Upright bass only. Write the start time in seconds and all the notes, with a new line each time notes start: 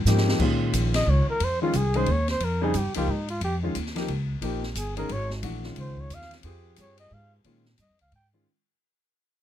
0.05 G#2
0.39 A#2
0.73 A#1
1.07 C#2
1.40 F2
1.73 C2
2.07 D#2
2.40 F2
2.74 G2
2.96 C#2
3.08 G#2
3.41 F2
3.75 D#2
4.07 C#2
4.41 A#1
4.75 G1
5.09 G#1
5.42 A#1
5.76 C#2
6.10 E2
6.44 F2
6.77 G2
7.11 G#2
7.44 A#2
7.78 G2
7.89 F2
8.01 C#2
8.12 G#2